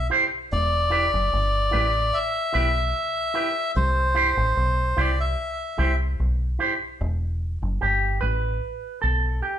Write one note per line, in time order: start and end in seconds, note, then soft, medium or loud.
0.10 0.24 E4 medium
0.10 0.24 G4 medium
0.10 0.24 C5 medium
0.52 1.09 E1 loud
0.52 2.19 D5 loud
0.90 1.04 E4 medium
0.90 1.05 G4 medium
0.90 1.05 B4 medium
1.13 1.31 F#1 medium
1.33 1.70 G1 medium
1.71 2.10 A1 loud
1.71 1.85 E4 medium
1.71 1.86 G4 medium
1.71 1.86 B4 medium
2.14 3.72 E5 loud
2.53 2.92 B1 medium
2.53 2.67 E4 medium
2.53 2.67 G4 medium
2.53 2.67 B4 medium
3.34 3.48 E4 medium
3.34 3.48 G4 medium
3.34 3.49 B4 medium
3.76 4.33 C2 loud
3.76 5.01 C5 loud
4.15 4.29 E4 medium
4.15 4.29 G4 medium
4.15 4.29 C5 medium
4.37 4.55 A1 medium
4.57 4.94 B1 medium
4.97 5.35 C2 medium
4.97 5.10 E4 medium
4.97 5.11 G4 medium
4.97 5.11 C5 loud
4.97 5.19 D5 medium
5.20 5.96 E5 medium
5.78 6.16 C2 medium
5.78 5.91 E4 medium
5.78 5.91 G4 medium
5.78 5.92 C5 medium
6.20 6.57 B1 medium
6.59 6.72 E4 medium
6.59 6.73 G4 medium
6.59 6.73 C5 medium
7.01 7.57 E1 loud
7.62 7.80 F#1 medium
7.81 8.19 G1 medium
7.81 8.20 G4 medium
8.21 8.59 A1 loud
8.21 9.01 B4 loud
9.02 9.40 B1 medium
9.02 9.42 A4 loud
9.43 9.59 G4 medium